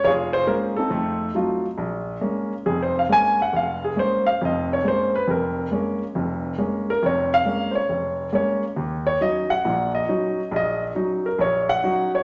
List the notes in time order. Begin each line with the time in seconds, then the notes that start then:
0.04 F1 F4 G#4 C#5
0.33 C5
0.47 G#3 A#3 C#4 A#4
0.77 C4 D#4 A4
0.90 F2 A3
1.35 F#3 A3 D#4 F4
1.78 A#1
2.21 G#3 A#3 C#4
2.66 F1 F2 G#4
2.83 C5
2.99 F5
3.09 G#3 A#3 C#4 G#5
3.42 F#5
3.53 F1 F5
3.84 G#4
3.96 G#3 A#3 C#4 C5
4.27 F5
4.41 F1 F2 D#5
4.73 C#5
4.84 G#3 A#3 C#4 C5
5.15 B4
5.28 F1 F2 A#4
5.71 G#3 A#3 C#4
6.15 F1 F2
6.58 G#3 A#3 C#4
6.90 A#4
7.03 F1 F2 C#5
7.34 F5
7.45 G#3 A#3 C#4
7.71 C5
7.75 C#5
7.89 F1
8.33 G#3 A#3 C#4 C#5
8.76 D#2
9.07 C#5
9.21 F#3 C#4 D#4 D#5
9.50 F#5
9.65 A#1 A#2
9.95 D#5
10.09 F#3 C#4 D#4
10.51 A#1
10.56 D#5
10.95 F#3 C#4 D#4
11.26 A#4
11.39 A#1 C#5
11.69 F#5
11.83 F#3 C#4 D#4
12.15 C#5